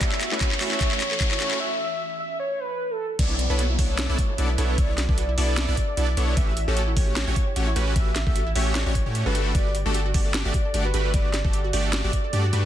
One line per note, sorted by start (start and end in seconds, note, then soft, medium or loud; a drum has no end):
0.00 0.30 F#1 medium
0.00 1.58 E3 medium
0.00 1.56 A3 medium
0.00 0.16 A3 medium
0.00 1.58 C#4 medium
0.00 0.16 E4 medium
0.00 1.58 F#4 medium
0.00 0.16 F#4 medium
0.00 0.33 E5 loud
0.00 kick loud
0.00 clap medium
0.00 closed hi-hat medium
0.00 riser medium
0.12 0.19 E4 medium
0.12 clap medium
0.21 0.27 F#4 medium
0.21 clap medium
0.21 closed hi-hat medium
0.32 0.59 F#1 loud
0.32 0.46 A3 medium
0.32 0.46 C#4 medium
0.32 0.46 E4 medium
0.32 0.46 F#4 medium
0.32 0.39 A4 medium
0.32 0.46 B4 loud
0.32 0.57 C#5 medium
0.32 clap medium
0.41 0.46 F#4 loud
0.41 kick medium
0.41 clap loud
0.41 closed hi-hat medium
0.52 0.56 E4 loud
0.52 clap medium
0.61 0.89 F#1 loud
0.61 0.89 A3 medium
0.61 0.89 C#4 medium
0.61 0.89 E4 medium
0.61 0.66 F#4 medium
0.61 0.89 F#4 medium
0.61 0.87 C#5 medium
0.61 0.89 E5 loud
0.61 clap loud
0.61 open hi-hat loud
0.72 0.76 A4 medium
0.72 clap medium
0.81 kick loud
0.81 clap loud
0.81 closed hi-hat medium
0.91 1.00 A3 loud
0.91 1.00 C#4 medium
0.91 1.00 E4 medium
0.91 0.98 E4 medium
0.91 1.00 F#4 medium
0.91 1.25 C#5 loud
0.91 1.00 E5 loud
0.91 clap medium
1.00 1.06 F#4 medium
1.00 clap medium
1.00 closed hi-hat medium
1.11 1.18 A4 medium
1.11 clap medium
1.20 1.30 A3 loud
1.20 1.30 C#4 medium
1.20 1.30 E4 medium
1.20 1.26 F#4 loud
1.20 1.30 F#4 medium
1.20 1.30 E5 loud
1.20 kick loud
1.20 clap loud
1.20 closed hi-hat medium
1.31 1.36 E4 loud
1.31 1.56 C#5 loud
1.31 clap medium
1.40 1.58 A3 medium
1.40 1.58 C#4 medium
1.40 1.58 E4 medium
1.40 1.58 F#4 medium
1.40 1.46 F#4 medium
1.40 1.58 C#5 medium
1.40 clap loud
1.40 closed hi-hat medium
1.51 1.56 A4 medium
1.51 clap medium
1.60 1.86 E5 loud
1.91 2.16 E5 medium
2.20 2.37 E5 medium
2.40 2.61 C#5 medium
2.59 2.92 B4 loud
2.90 3.15 A4 loud
3.19 3.48 B1 loud
3.19 3.34 B3 loud
3.19 3.34 D4 medium
3.19 3.34 E4 medium
3.19 3.34 A4 medium
3.19 3.34 C#5 loud
3.19 3.51 D5 loud
3.19 kick loud
3.19 closed hi-hat medium
3.19 crash loud
3.19 downlifter medium
3.30 3.37 E4 medium
3.39 3.45 F#4 medium
3.39 closed hi-hat medium
3.50 3.77 B1 loud
3.50 3.64 B3 medium
3.50 3.64 D4 medium
3.50 3.64 E4 medium
3.50 3.57 A4 medium
3.50 3.64 A4 medium
3.50 3.64 B4 loud
3.50 3.75 C#5 medium
3.59 3.64 F#4 loud
3.59 closed hi-hat medium
3.70 3.74 E4 loud
3.79 4.07 B3 medium
3.79 4.07 D4 medium
3.79 4.07 E4 medium
3.79 3.84 F#4 medium
3.79 4.07 A4 medium
3.79 4.05 C#5 medium
3.79 4.07 D5 loud
3.79 kick loud
3.79 open hi-hat loud
3.90 3.94 A4 medium
3.99 snare loud
3.99 closed hi-hat medium
4.09 4.16 B1 loud
4.09 4.18 B3 loud
4.09 4.18 D4 loud
4.09 4.18 E4 medium
4.09 4.16 E4 medium
4.09 4.18 A4 medium
4.09 4.43 C#5 medium
4.09 4.18 D5 loud
4.18 4.24 F#4 medium
4.18 kick loud
4.18 closed hi-hat medium
4.29 4.36 A4 medium
4.38 4.56 B1 medium
4.38 4.48 B3 loud
4.38 4.48 D4 medium
4.38 4.48 E4 medium
4.38 4.44 F#4 loud
4.38 4.48 A4 medium
4.38 4.48 D5 loud
4.38 closed hi-hat medium
4.49 4.54 E4 loud
4.49 4.79 B4 medium
4.58 4.76 B1 medium
4.58 4.76 B3 medium
4.58 4.76 D4 medium
4.58 4.76 E4 medium
4.58 4.64 F#4 medium
4.58 4.76 A4 medium
4.58 4.76 C#5 medium
4.58 closed hi-hat medium
4.69 4.74 A4 medium
4.78 5.07 B1 medium
4.78 4.93 B3 medium
4.78 4.93 D4 medium
4.78 4.93 E4 medium
4.78 4.93 A4 medium
4.78 4.93 C#5 loud
4.78 5.04 D5 loud
4.78 kick loud
4.78 closed hi-hat medium
4.89 4.96 E4 medium
4.98 5.03 F#4 medium
4.98 snare medium
4.98 closed hi-hat medium
5.09 5.36 B1 loud
5.09 5.23 B3 medium
5.09 5.23 D4 medium
5.09 5.23 E4 medium
5.09 5.16 A4 medium
5.09 5.23 A4 medium
5.09 5.23 B4 loud
5.09 5.34 D5 medium
5.09 kick loud
5.18 5.23 F#4 loud
5.18 closed hi-hat medium
5.29 5.33 E4 loud
5.38 5.66 B1 loud
5.38 5.66 B3 medium
5.38 5.66 D4 medium
5.38 5.66 E4 medium
5.38 5.43 F#4 medium
5.38 5.66 A4 medium
5.38 5.55 D5 medium
5.38 5.66 D5 loud
5.38 open hi-hat medium
5.49 5.53 A4 medium
5.57 5.75 D5 medium
5.57 snare loud
5.57 closed hi-hat medium
5.68 5.75 B1 loud
5.68 5.77 B3 loud
5.68 5.77 D4 medium
5.68 5.75 E4 medium
5.68 5.77 E4 medium
5.68 5.77 A4 medium
5.68 5.77 D5 loud
5.77 5.83 F#4 medium
5.77 6.04 D5 medium
5.77 kick medium
5.77 closed hi-hat medium
5.88 5.95 A4 medium
5.97 6.15 B1 loud
5.97 6.07 B3 loud
5.97 6.07 D4 medium
5.97 6.07 E4 medium
5.97 6.03 F#4 loud
5.97 6.07 A4 medium
5.97 6.07 D5 loud
5.97 closed hi-hat medium
6.08 6.13 E4 loud
6.08 6.33 D5 medium
6.17 6.35 B1 medium
6.17 6.35 B3 medium
6.17 6.35 D4 medium
6.17 6.35 E4 medium
6.17 6.23 F#4 medium
6.17 6.35 A4 medium
6.17 6.35 C#5 medium
6.17 closed hi-hat medium
6.28 6.33 A4 medium
6.37 6.52 A3 medium
6.37 6.52 C#4 medium
6.37 6.52 F#4 medium
6.37 6.52 G4 medium
6.37 6.63 E5 loud
6.37 kick loud
6.37 closed hi-hat medium
6.48 6.55 E4 medium
6.57 6.62 F#4 medium
6.57 closed hi-hat medium
6.68 6.95 A1 medium
6.68 6.82 A3 medium
6.68 6.82 C#4 medium
6.68 6.82 F#4 medium
6.68 6.82 G4 medium
6.68 6.75 G4 medium
6.68 6.82 A4 loud
6.68 6.93 C#5 loud
6.77 6.82 F#4 loud
6.77 closed hi-hat medium
6.88 6.92 E4 loud
6.97 7.25 A3 medium
6.97 7.25 C#4 medium
6.97 7.25 F#4 medium
6.97 7.25 G4 medium
6.97 7.25 C#5 loud
6.97 7.23 C#5 medium
6.97 kick loud
6.97 open hi-hat medium
7.07 7.12 G4 medium
7.16 snare loud
7.16 closed hi-hat medium
7.27 7.34 A1 loud
7.27 7.35 A3 loud
7.27 7.35 C#4 medium
7.27 7.34 E4 medium
7.27 7.35 F#4 medium
7.27 7.35 G4 medium
7.27 7.35 C#5 loud
7.27 7.61 C#5 medium
7.36 7.42 F#4 medium
7.36 kick loud
7.36 closed hi-hat medium
7.47 7.54 G4 medium
7.56 7.74 A1 loud
7.56 7.66 A3 loud
7.56 7.66 C#4 medium
7.56 7.62 F#4 loud
7.56 7.66 F#4 medium
7.56 7.66 G4 medium
7.56 7.66 C#5 loud
7.56 closed hi-hat medium
7.67 7.72 E4 loud
7.67 7.92 C#5 medium
7.76 7.94 A1 loud
7.76 7.94 A3 medium
7.76 7.94 C#4 medium
7.76 7.94 F#4 medium
7.76 7.82 F#4 medium
7.76 7.94 G4 medium
7.76 7.94 B4 medium
7.76 closed hi-hat medium
7.87 7.92 G4 medium
7.96 8.11 A3 medium
7.96 8.11 C#4 medium
7.96 8.11 F#4 medium
7.96 8.11 G4 medium
7.96 8.11 B4 loud
7.96 8.22 E5 loud
7.96 kick loud
7.96 closed hi-hat medium
8.07 8.14 E4 medium
8.16 8.21 F#4 medium
8.16 snare medium
8.16 closed hi-hat medium
8.27 8.41 A3 medium
8.27 8.41 C#4 medium
8.27 8.41 F#4 medium
8.27 8.34 G4 medium
8.27 8.41 G4 medium
8.27 8.41 A4 loud
8.27 8.52 E5 loud
8.27 kick loud
8.36 8.41 F#4 loud
8.36 closed hi-hat medium
8.47 8.51 E4 loud
8.55 8.84 A1 loud
8.55 8.84 A3 medium
8.55 8.84 C#4 medium
8.55 8.61 F#4 medium
8.55 8.84 F#4 medium
8.55 8.84 G4 medium
8.55 8.84 C#5 loud
8.55 8.73 E5 medium
8.55 open hi-hat medium
8.66 8.71 G4 medium
8.75 8.93 D5 medium
8.75 snare loud
8.75 closed hi-hat medium
8.86 9.04 A1 loud
8.86 8.94 A3 loud
8.86 8.94 C#4 medium
8.86 8.93 E4 medium
8.86 8.94 F#4 medium
8.86 8.94 G4 loud
8.86 8.94 C#5 loud
8.95 9.01 B4 loud
8.95 9.21 C#5 loud
8.95 kick medium
8.95 closed hi-hat medium
9.06 9.24 A2 loud
9.06 9.23 A3 medium
9.06 9.23 C#4 medium
9.06 9.23 F#4 medium
9.06 9.11 G4 loud
9.06 9.23 G4 medium
9.06 9.23 C#5 medium
9.15 9.21 E5 medium
9.15 closed hi-hat medium
9.26 9.53 G1 loud
9.26 9.53 A3 medium
9.26 9.53 D4 medium
9.26 9.53 F#4 medium
9.26 9.53 G4 medium
9.26 9.29 A4 loud
9.26 9.53 A4 medium
9.26 9.51 B4 medium
9.35 9.40 A4 medium
9.35 closed hi-hat medium
9.46 9.53 F#4 loud
9.55 9.70 A3 medium
9.55 9.70 D4 medium
9.55 9.70 F#4 medium
9.55 9.70 G4 medium
9.55 9.70 B4 loud
9.55 9.81 D5 loud
9.55 kick loud
9.55 closed hi-hat medium
9.66 9.73 F#4 medium
9.75 9.80 G4 medium
9.75 closed hi-hat medium
9.86 10.13 G1 loud
9.86 10.00 A3 medium
9.86 10.00 D4 medium
9.86 10.00 F#4 medium
9.86 10.00 G4 medium
9.86 9.92 A4 medium
9.86 10.00 A4 loud
9.86 10.11 D5 medium
9.94 10.00 G4 loud
9.94 closed hi-hat medium
10.05 10.10 F#4 loud
10.14 10.43 A3 medium
10.14 10.43 D4 medium
10.14 10.43 F#4 medium
10.14 10.43 G4 medium
10.14 10.20 G4 medium
10.14 10.41 D5 medium
10.14 10.43 D5 loud
10.14 kick loud
10.14 open hi-hat medium
10.25 10.30 A4 medium
10.34 snare loud
10.34 closed hi-hat medium
10.45 10.52 G1 loud
10.45 10.53 A3 loud
10.45 10.53 D4 medium
10.45 10.53 F#4 medium
10.45 10.52 F#4 medium
10.45 10.53 G4 medium
10.45 10.79 D5 medium
10.45 10.53 D5 loud
10.54 10.60 G4 medium
10.54 kick loud
10.54 closed hi-hat medium
10.65 10.72 A4 medium
10.74 10.92 G1 loud
10.74 10.84 A3 loud
10.74 10.84 D4 medium
10.74 10.84 F#4 medium
10.74 10.80 G4 loud
10.74 10.84 G4 medium
10.74 10.84 D5 loud
10.74 closed hi-hat medium
10.85 10.90 F#4 loud
10.85 11.10 B4 medium
10.94 11.12 G1 loud
10.94 11.12 A3 medium
10.94 11.12 D4 medium
10.94 11.12 F#4 medium
10.94 10.99 G4 medium
10.94 11.12 G4 medium
10.94 11.12 B4 medium
10.94 closed hi-hat medium
11.05 11.09 A4 medium
11.14 11.42 G1 loud
11.14 11.29 A3 medium
11.14 11.29 D4 medium
11.14 11.29 F#4 medium
11.14 11.29 G4 medium
11.14 11.29 B4 loud
11.14 11.40 D5 loud
11.14 kick loud
11.14 closed hi-hat medium
11.25 11.32 F#4 medium
11.34 11.39 G4 medium
11.34 snare medium
11.34 closed hi-hat medium
11.45 11.58 A3 medium
11.45 11.58 D4 medium
11.45 11.58 F#4 medium
11.45 11.58 G4 medium
11.45 11.51 A4 medium
11.45 11.58 A4 loud
11.45 11.70 D5 medium
11.45 kick loud
11.53 11.59 G4 loud
11.53 closed hi-hat medium
11.64 11.69 F#4 loud
11.73 12.02 G1 loud
11.73 12.02 A3 medium
11.73 12.02 D4 medium
11.73 12.02 F#4 medium
11.73 12.02 G4 medium
11.73 11.79 G4 medium
11.73 11.91 D5 medium
11.73 12.02 D5 loud
11.73 open hi-hat medium
11.84 11.89 A4 medium
11.93 12.11 D5 medium
11.93 snare loud
11.93 closed hi-hat medium
12.04 12.11 G1 loud
12.04 12.12 A3 loud
12.04 12.12 D4 medium
12.04 12.11 F#4 medium
12.04 12.12 F#4 medium
12.04 12.12 G4 medium
12.04 12.12 D5 loud
12.13 12.19 G4 medium
12.13 12.39 D5 loud
12.13 kick medium
12.13 closed hi-hat medium
12.24 12.31 A4 medium
12.33 12.51 G2 loud
12.33 12.43 A3 loud
12.33 12.43 D4 medium
12.33 12.43 F#4 medium
12.33 12.39 G4 loud
12.33 12.43 G4 medium
12.33 12.43 D5 loud
12.33 closed hi-hat medium
12.44 12.49 F#4 loud
12.44 12.65 D5 loud
12.53 12.65 G2 medium
12.53 12.65 A3 medium
12.53 12.65 D4 medium
12.53 12.65 F#4 medium
12.53 12.65 G4 medium
12.53 12.58 G4 medium
12.53 12.65 B4 medium
12.53 closed hi-hat medium